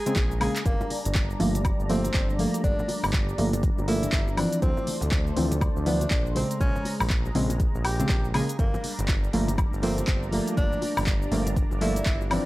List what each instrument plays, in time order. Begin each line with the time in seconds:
Already playing: analog synth pad G#3 G#5 A#5, tenor saxophone G#4
0.06 synth stab C#3 G#3 C4, closed hi-hat, high conga, shaker
0.16 analog synth bass A#1, kick, clap, closed hi-hat, high bongo, shaker
0.31 shaker
0.40 synth stab C#3 G#3 A#3, tenor saxophone G#4, open hi-hat, high woodblock
0.56 clap, closed hi-hat, shaker
0.65 analog synth bass G1, analog synth pad G3 D4 D5, tenor saxophone A#3, kick, closed hi-hat, shaker
0.81 high bongo, low conga, shaker
0.90 open hi-hat, high conga
1.05 analog synth bass G1, closed hi-hat, low conga, shaker
1.15 kick, clap, closed hi-hat, high bongo, shaker
1.30 shaker
1.40 analog synth bass G1, synth stab F3 A3 A#3, open hi-hat, low conga
1.55 closed hi-hat, high conga, shaker
1.65 kick, closed hi-hat, high bongo, high woodblock, shaker
1.80 analog synth bass G1, shaker
1.89 synth stab F3 A3 A#3, tenor saxophone C4, open hi-hat
2.04 closed hi-hat, high bongo, high conga, shaker
2.14 analog synth bass G1, kick, clap, closed hi-hat, shaker
2.30 shaker
2.38 synth stab F3 A3 A#3, tenor saxophone A#3, open hi-hat
2.54 closed hi-hat, high bongo, shaker
2.64 analog synth bass G1, tenor saxophone D4, kick, closed hi-hat, shaker
2.79 low conga, shaker
2.88 open hi-hat, high bongo, high conga
3.03 analog synth bass G1, open hi-hat, low conga, high woodblock, shaker
3.13 kick, clap, closed hi-hat, shaker
3.29 shaker
3.38 analog synth bass G1, synth stab F3 A3 A#3, open hi-hat, high bongo, low conga
3.53 closed hi-hat, high conga, shaker
3.63 kick, closed hi-hat, shaker
3.78 analog synth bass G1, high bongo, shaker
3.87 synth stab F3 A3 A#3, tenor saxophone E4, open hi-hat
4.03 closed hi-hat, high conga, shaker
4.12 analog synth bass G1, kick, clap, closed hi-hat, shaker
4.27 high bongo, shaker
4.37 synth stab E3 F3 C4, tenor saxophone D4, open hi-hat, high woodblock
4.52 closed hi-hat, shaker
4.62 analog synth bass D2, analog synth pad A3 C5 D5, tenor saxophone C4, kick, closed hi-hat, high bongo, shaker
4.77 low conga, shaker
4.87 open hi-hat, high conga
5.01 analog synth bass D2, closed hi-hat, low conga, shaker
5.11 kick, clap, closed hi-hat, high bongo, shaker
5.27 shaker
5.36 analog synth bass D2, synth stab E3 F3 C4, open hi-hat, low conga
5.51 closed hi-hat, high bongo, high conga, shaker
5.61 kick, closed hi-hat, high woodblock, shaker
5.76 analog synth bass D2, shaker
5.86 synth stab E3 F3 B3, tenor saxophone D4, open hi-hat
6.01 closed hi-hat, high bongo, high conga, shaker
6.11 analog synth bass A#1, kick, clap, closed hi-hat, shaker
6.26 shaker
6.35 synth stab C#3 G#3 C5, analog synth pad G#3 A#5, tenor saxophone C4, open hi-hat, high bongo
6.51 closed hi-hat, shaker
6.61 analog synth bass A#1, tenor saxophone C#4, kick, closed hi-hat, shaker
6.76 low conga, shaker
6.85 open hi-hat, high bongo, high conga
7.00 analog synth bass A#1, open hi-hat, low conga, high woodblock, shaker
7.10 kick, clap, closed hi-hat, shaker
7.25 high bongo, shaker
7.35 analog synth bass A#1, synth stab C#3 G#3 C4, open hi-hat, low conga
7.50 closed hi-hat, high conga, shaker
7.60 kick, closed hi-hat, shaker
7.75 analog synth bass A#1, high bongo, shaker
7.85 tenor saxophone G4, open hi-hat, high woodblock
7.99 synth stab C#3 G#3 C4, closed hi-hat, high conga, shaker
8.09 analog synth bass A#1, kick, clap, closed hi-hat, high bongo, shaker
8.25 shaker
8.34 synth stab C#3 G#3 A#3, tenor saxophone G#4, open hi-hat, high woodblock
8.49 closed hi-hat, shaker
8.59 analog synth bass G1, analog synth pad G3 D4 D5, tenor saxophone A#3, kick, closed hi-hat, shaker
8.74 high bongo, low conga, shaker
8.84 open hi-hat, high conga
8.99 analog synth bass G1, closed hi-hat, low conga, shaker
9.08 kick, clap, closed hi-hat, high bongo, shaker
9.24 shaker
9.33 analog synth bass G1, synth stab F3 A3 A#3, open hi-hat, low conga
9.48 closed hi-hat, high conga, shaker
9.58 kick, closed hi-hat, high bongo, high woodblock, shaker
9.73 analog synth bass G1, shaker
9.83 synth stab F3 A3 A#3, tenor saxophone C4, open hi-hat
9.97 closed hi-hat, high bongo, high conga, shaker
10.07 analog synth bass G1, kick, clap, closed hi-hat, shaker
10.23 shaker
10.32 synth stab F3 A3 A#3, tenor saxophone A#3, open hi-hat
10.47 closed hi-hat, high bongo, shaker
10.57 analog synth bass G1, tenor saxophone D4, kick, closed hi-hat, shaker
10.73 low conga, shaker
10.82 open hi-hat, high bongo, high conga
10.97 analog synth bass G1, open hi-hat, low conga, high woodblock, shaker
11.07 kick, clap, closed hi-hat, shaker
11.22 shaker
11.31 analog synth bass G1, synth stab F3 A3 A#3, open hi-hat, high bongo, low conga
11.46 closed hi-hat, high conga, shaker
11.56 kick, closed hi-hat, shaker
11.71 analog synth bass G1, high bongo, shaker
11.81 synth stab F3 A3 A#3, tenor saxophone E4, open hi-hat
11.96 closed hi-hat, high conga, shaker
12.06 analog synth bass G1, kick, clap, closed hi-hat, shaker
12.21 high bongo, shaker
12.30 synth stab E3 F3 C4, tenor saxophone D4, open hi-hat, high woodblock